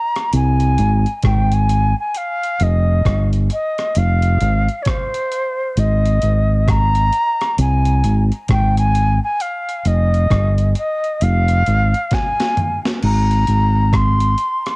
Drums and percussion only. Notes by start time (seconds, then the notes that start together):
0.16 cross-stick, closed hi-hat
0.33 closed hi-hat
0.60 closed hi-hat
0.78 closed hi-hat
1.06 closed hi-hat
1.23 kick, cross-stick, closed hi-hat
1.52 closed hi-hat
1.69 closed hi-hat
2.14 closed hi-hat
2.43 closed hi-hat
2.60 closed hi-hat
3.05 kick, cross-stick, closed hi-hat
3.33 closed hi-hat
3.50 closed hi-hat
3.78 cross-stick, closed hi-hat
3.95 closed hi-hat
4.22 closed hi-hat
4.41 closed hi-hat
4.69 closed hi-hat
4.85 kick, cross-stick, closed hi-hat
5.14 closed hi-hat
5.32 closed hi-hat
5.77 closed hi-hat
6.06 closed hi-hat
6.22 closed hi-hat
6.68 kick, cross-stick, closed hi-hat
6.95 closed hi-hat
7.12 closed hi-hat
7.41 cross-stick, closed hi-hat
7.58 closed hi-hat
7.85 closed hi-hat
8.04 closed hi-hat
8.32 closed hi-hat
8.48 kick, cross-stick, closed hi-hat
8.77 closed hi-hat
8.95 closed hi-hat
9.40 closed hi-hat
9.69 closed hi-hat
9.85 closed hi-hat
10.14 closed hi-hat
10.30 kick, cross-stick, closed hi-hat
10.58 closed hi-hat
10.75 closed hi-hat
11.04 closed hi-hat
11.21 closed hi-hat
11.48 closed hi-hat
11.66 closed hi-hat
11.94 closed hi-hat
12.11 kick, snare, closed hi-hat
12.40 snare, closed hi-hat
12.57 closed hi-hat, mid tom
12.85 snare
13.02 crash
13.31 closed hi-hat
13.47 closed hi-hat
13.93 kick, cross-stick, closed hi-hat
14.20 closed hi-hat
14.38 closed hi-hat
14.66 cross-stick, closed hi-hat